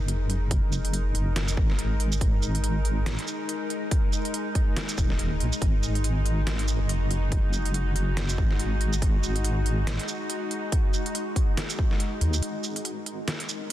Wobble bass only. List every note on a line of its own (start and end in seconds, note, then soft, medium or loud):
0.00 1.14 F#1 loud
1.15 1.56 F#1 loud
1.57 2.20 G#1 medium
2.21 3.17 G#1 loud
4.98 5.42 D#1 loud
5.40 5.52 B1 medium
5.62 6.82 G#1 loud
6.80 7.94 F#1 medium
7.96 8.37 F#1 loud
8.38 9.01 G#1 medium
9.02 9.98 G#1 loud
12.21 12.41 D#2 medium
12.42 13.63 G#1 loud
13.61 13.72 F#1 loud